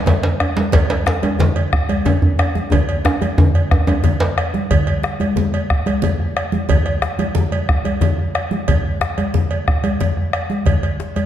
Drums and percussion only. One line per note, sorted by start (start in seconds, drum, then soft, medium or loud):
0.06 cowbell soft
0.06 djembe slap medium
0.06 low conga medium
0.06 djembe bass medium
0.23 djembe slap medium
0.40 bombo rim loud
0.40 cowbell medium
0.40 djembe tone medium
0.56 bombo rim soft
0.56 djembe slap medium
0.56 high conga medium
0.56 djembe tone medium
0.72 bombo low loud
0.72 cowbell medium
0.72 djembe slap loud
0.72 low conga medium
0.72 djembe bass medium
0.89 cowbell medium
0.89 djembe slap soft
0.89 djembe slap medium
0.89 high conga soft
1.06 bombo rim loud
1.06 djembe slap medium
1.06 high conga soft
1.22 bombo rim soft
1.22 cowbell soft
1.22 djembe tone medium
1.22 high conga medium
1.22 djembe tone medium
1.39 djembe slap soft
1.39 djembe slap medium
1.39 high conga soft
1.39 djembe bass medium
1.39 low conga medium
1.56 cowbell soft
1.73 bombo rim loud
1.73 bombo low loud
1.89 cowbell soft
1.89 djembe tone medium
1.89 high conga medium
2.06 cowbell soft
2.06 djembe slap medium
2.06 djembe tone loud
2.06 djembe bass medium
2.06 low conga medium
2.22 djembe bass medium
2.39 bombo rim loud
2.39 cowbell medium
2.39 djembe tone medium
2.55 bombo rim soft
2.55 djembe tone medium
2.55 high conga medium
2.71 bombo low medium
2.71 cowbell medium
2.71 djembe tone medium
2.71 djembe bass medium
2.71 low conga medium
2.89 cowbell soft
3.05 bombo rim loud
3.05 djembe slap medium
3.05 djembe tone loud
3.21 cowbell soft
3.21 djembe slap soft
3.21 djembe tone medium
3.21 high conga medium
3.38 bombo rim soft
3.38 djembe slap soft
3.38 djembe tone loud
3.38 high conga soft
3.38 djembe bass medium
3.38 low conga medium
3.55 bombo rim soft
3.55 cowbell soft
3.55 djembe slap soft
3.71 bombo rim loud
3.71 bombo low loud
3.71 djembe tone medium
3.71 high conga soft
3.87 bombo rim soft
3.87 cowbell soft
3.87 djembe tone medium
3.87 djembe tone loud
3.87 high conga medium
4.04 cowbell soft
4.04 djembe slap medium
4.04 djembe bass medium
4.04 low conga medium
4.20 djembe slap loud
4.20 high conga soft
4.38 bombo rim medium
4.38 cowbell medium
4.54 djembe slap soft
4.54 djembe tone medium
4.54 high conga medium
4.71 bombo low medium
4.71 cowbell medium
4.71 djembe bass medium
4.71 low conga medium
4.87 bombo rim soft
4.87 cowbell medium
5.03 bombo rim medium
5.03 djembe slap medium
5.20 cowbell soft
5.20 high conga medium
5.20 djembe tone medium
5.36 djembe bass medium
5.36 low conga medium
5.53 cowbell medium
5.53 high conga soft
5.70 bombo rim loud
5.70 bombo low medium
5.86 cowbell medium
5.86 high conga medium
5.86 djembe tone medium
6.02 cowbell soft
6.02 low conga medium
6.02 djembe bass medium
6.20 bombo rim soft
6.37 bombo rim loud
6.37 cowbell soft
6.52 high conga medium
6.52 djembe tone medium
6.69 bombo low medium
6.69 cowbell medium
6.69 low conga medium
6.69 djembe bass medium
6.86 bombo rim soft
6.86 cowbell medium
7.02 bombo rim medium
7.02 djembe slap medium
7.19 cowbell soft
7.19 high conga medium
7.19 djembe tone medium
7.35 low conga medium
7.35 djembe bass medium
7.52 cowbell soft
7.52 high conga soft
7.69 bombo rim medium
7.69 bombo low loud
7.85 cowbell soft
7.85 djembe tone medium
7.85 high conga medium
8.01 cowbell soft
8.01 djembe slap medium
8.01 djembe bass medium
8.01 low conga medium
8.19 bombo rim soft
8.35 bombo rim medium
8.35 cowbell soft
8.51 high conga medium
8.51 djembe tone medium
8.68 bombo low medium
8.68 cowbell medium
8.68 low conga medium
8.68 djembe bass medium
8.85 bombo rim soft
9.01 bombo rim loud
9.01 djembe slap medium
9.18 cowbell soft
9.18 high conga medium
9.18 djembe tone medium
9.34 low conga medium
9.34 djembe bass medium
9.51 cowbell soft
9.68 bombo rim loud
9.68 bombo low loud
9.84 cowbell soft
9.84 high conga medium
9.84 djembe tone medium
10.00 cowbell soft
10.00 djembe slap medium
10.00 low conga medium
10.00 djembe bass medium
10.17 bombo rim soft
10.33 bombo rim loud
10.33 cowbell soft
10.50 high conga medium
10.50 djembe tone medium
10.66 bombo low medium
10.66 cowbell medium
10.66 djembe slap soft
10.66 high conga soft
10.66 low conga medium
10.66 djembe bass medium
10.83 cowbell soft
10.83 high conga soft
11.00 djembe slap medium
11.16 cowbell soft
11.16 djembe slap soft
11.16 high conga medium
11.16 djembe tone medium